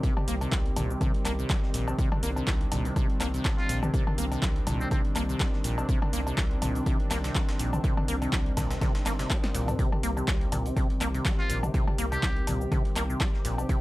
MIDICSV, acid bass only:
0, 0, Header, 1, 2, 480
1, 0, Start_track
1, 0, Key_signature, -3, "minor"
1, 0, Tempo, 487805
1, 33, Time_signature, 4, 2, 24, 8
1, 13588, End_track
2, 0, Start_track
2, 0, Title_t, "Acid bass"
2, 0, Program_c, 0, 38
2, 34, Note_on_c, 0, 48, 99
2, 143, Note_off_c, 0, 48, 0
2, 274, Note_on_c, 0, 58, 103
2, 347, Note_off_c, 0, 58, 0
2, 406, Note_on_c, 0, 48, 81
2, 514, Note_on_c, 0, 55, 86
2, 529, Note_off_c, 0, 48, 0
2, 586, Note_off_c, 0, 55, 0
2, 754, Note_on_c, 0, 46, 78
2, 887, Note_on_c, 0, 48, 76
2, 901, Note_off_c, 0, 46, 0
2, 975, Note_off_c, 0, 48, 0
2, 994, Note_on_c, 0, 48, 100
2, 1103, Note_off_c, 0, 48, 0
2, 1234, Note_on_c, 0, 58, 107
2, 1306, Note_off_c, 0, 58, 0
2, 1367, Note_on_c, 0, 48, 79
2, 1474, Note_on_c, 0, 55, 84
2, 1489, Note_off_c, 0, 48, 0
2, 1547, Note_off_c, 0, 55, 0
2, 1714, Note_on_c, 0, 46, 75
2, 1847, Note_on_c, 0, 48, 78
2, 1862, Note_off_c, 0, 46, 0
2, 1935, Note_off_c, 0, 48, 0
2, 1954, Note_on_c, 0, 48, 101
2, 2063, Note_off_c, 0, 48, 0
2, 2195, Note_on_c, 0, 58, 104
2, 2267, Note_off_c, 0, 58, 0
2, 2327, Note_on_c, 0, 48, 80
2, 2435, Note_on_c, 0, 55, 84
2, 2449, Note_off_c, 0, 48, 0
2, 2507, Note_off_c, 0, 55, 0
2, 2674, Note_on_c, 0, 46, 77
2, 2807, Note_on_c, 0, 48, 80
2, 2822, Note_off_c, 0, 46, 0
2, 2895, Note_off_c, 0, 48, 0
2, 2914, Note_on_c, 0, 48, 101
2, 3023, Note_off_c, 0, 48, 0
2, 3154, Note_on_c, 0, 58, 104
2, 3227, Note_off_c, 0, 58, 0
2, 3286, Note_on_c, 0, 48, 82
2, 3393, Note_on_c, 0, 55, 86
2, 3408, Note_off_c, 0, 48, 0
2, 3466, Note_off_c, 0, 55, 0
2, 3633, Note_on_c, 0, 46, 76
2, 3766, Note_on_c, 0, 48, 76
2, 3781, Note_off_c, 0, 46, 0
2, 3855, Note_off_c, 0, 48, 0
2, 3873, Note_on_c, 0, 48, 102
2, 3983, Note_off_c, 0, 48, 0
2, 4113, Note_on_c, 0, 58, 103
2, 4186, Note_off_c, 0, 58, 0
2, 4246, Note_on_c, 0, 48, 82
2, 4353, Note_on_c, 0, 55, 84
2, 4368, Note_off_c, 0, 48, 0
2, 4426, Note_off_c, 0, 55, 0
2, 4593, Note_on_c, 0, 46, 78
2, 4726, Note_on_c, 0, 48, 77
2, 4741, Note_off_c, 0, 46, 0
2, 4815, Note_off_c, 0, 48, 0
2, 4833, Note_on_c, 0, 48, 100
2, 4943, Note_off_c, 0, 48, 0
2, 5073, Note_on_c, 0, 58, 101
2, 5146, Note_off_c, 0, 58, 0
2, 5207, Note_on_c, 0, 48, 76
2, 5314, Note_on_c, 0, 55, 83
2, 5329, Note_off_c, 0, 48, 0
2, 5387, Note_off_c, 0, 55, 0
2, 5555, Note_on_c, 0, 46, 77
2, 5687, Note_on_c, 0, 48, 77
2, 5701, Note_off_c, 0, 46, 0
2, 5775, Note_off_c, 0, 48, 0
2, 5794, Note_on_c, 0, 48, 106
2, 5903, Note_off_c, 0, 48, 0
2, 6033, Note_on_c, 0, 58, 102
2, 6106, Note_off_c, 0, 58, 0
2, 6166, Note_on_c, 0, 48, 84
2, 6274, Note_on_c, 0, 55, 82
2, 6289, Note_off_c, 0, 48, 0
2, 6347, Note_off_c, 0, 55, 0
2, 6514, Note_on_c, 0, 46, 79
2, 6647, Note_on_c, 0, 48, 78
2, 6661, Note_off_c, 0, 46, 0
2, 6735, Note_off_c, 0, 48, 0
2, 6754, Note_on_c, 0, 48, 102
2, 6863, Note_off_c, 0, 48, 0
2, 6994, Note_on_c, 0, 58, 106
2, 7066, Note_off_c, 0, 58, 0
2, 7127, Note_on_c, 0, 48, 79
2, 7234, Note_on_c, 0, 55, 85
2, 7249, Note_off_c, 0, 48, 0
2, 7307, Note_off_c, 0, 55, 0
2, 7474, Note_on_c, 0, 46, 74
2, 7607, Note_on_c, 0, 48, 77
2, 7622, Note_off_c, 0, 46, 0
2, 7695, Note_off_c, 0, 48, 0
2, 7713, Note_on_c, 0, 48, 106
2, 7823, Note_off_c, 0, 48, 0
2, 7953, Note_on_c, 0, 58, 101
2, 8026, Note_off_c, 0, 58, 0
2, 8086, Note_on_c, 0, 48, 83
2, 8194, Note_on_c, 0, 55, 82
2, 8209, Note_off_c, 0, 48, 0
2, 8266, Note_off_c, 0, 55, 0
2, 8433, Note_on_c, 0, 46, 76
2, 8566, Note_on_c, 0, 48, 75
2, 8581, Note_off_c, 0, 46, 0
2, 8655, Note_off_c, 0, 48, 0
2, 8673, Note_on_c, 0, 48, 102
2, 8783, Note_off_c, 0, 48, 0
2, 8913, Note_on_c, 0, 58, 100
2, 8986, Note_off_c, 0, 58, 0
2, 9046, Note_on_c, 0, 48, 79
2, 9154, Note_on_c, 0, 55, 86
2, 9168, Note_off_c, 0, 48, 0
2, 9226, Note_off_c, 0, 55, 0
2, 9393, Note_on_c, 0, 46, 73
2, 9526, Note_on_c, 0, 48, 76
2, 9541, Note_off_c, 0, 46, 0
2, 9614, Note_off_c, 0, 48, 0
2, 9633, Note_on_c, 0, 48, 100
2, 9743, Note_off_c, 0, 48, 0
2, 9873, Note_on_c, 0, 58, 105
2, 9946, Note_off_c, 0, 58, 0
2, 10006, Note_on_c, 0, 48, 80
2, 10113, Note_on_c, 0, 55, 86
2, 10128, Note_off_c, 0, 48, 0
2, 10186, Note_off_c, 0, 55, 0
2, 10353, Note_on_c, 0, 46, 78
2, 10486, Note_on_c, 0, 48, 80
2, 10501, Note_off_c, 0, 46, 0
2, 10575, Note_off_c, 0, 48, 0
2, 10593, Note_on_c, 0, 48, 101
2, 10702, Note_off_c, 0, 48, 0
2, 10833, Note_on_c, 0, 58, 104
2, 10906, Note_off_c, 0, 58, 0
2, 10966, Note_on_c, 0, 48, 80
2, 11073, Note_on_c, 0, 55, 81
2, 11088, Note_off_c, 0, 48, 0
2, 11146, Note_off_c, 0, 55, 0
2, 11313, Note_on_c, 0, 46, 77
2, 11446, Note_on_c, 0, 48, 76
2, 11461, Note_off_c, 0, 46, 0
2, 11535, Note_off_c, 0, 48, 0
2, 11553, Note_on_c, 0, 48, 100
2, 11663, Note_off_c, 0, 48, 0
2, 11793, Note_on_c, 0, 58, 105
2, 11866, Note_off_c, 0, 58, 0
2, 11926, Note_on_c, 0, 48, 81
2, 12034, Note_on_c, 0, 55, 82
2, 12049, Note_off_c, 0, 48, 0
2, 12107, Note_off_c, 0, 55, 0
2, 12273, Note_on_c, 0, 46, 82
2, 12406, Note_on_c, 0, 48, 76
2, 12421, Note_off_c, 0, 46, 0
2, 12495, Note_off_c, 0, 48, 0
2, 12514, Note_on_c, 0, 48, 102
2, 12623, Note_off_c, 0, 48, 0
2, 12753, Note_on_c, 0, 58, 109
2, 12826, Note_off_c, 0, 58, 0
2, 12886, Note_on_c, 0, 48, 82
2, 12994, Note_on_c, 0, 55, 84
2, 13008, Note_off_c, 0, 48, 0
2, 13066, Note_off_c, 0, 55, 0
2, 13234, Note_on_c, 0, 46, 72
2, 13366, Note_on_c, 0, 48, 79
2, 13381, Note_off_c, 0, 46, 0
2, 13455, Note_off_c, 0, 48, 0
2, 13473, Note_on_c, 0, 48, 99
2, 13583, Note_off_c, 0, 48, 0
2, 13588, End_track
0, 0, End_of_file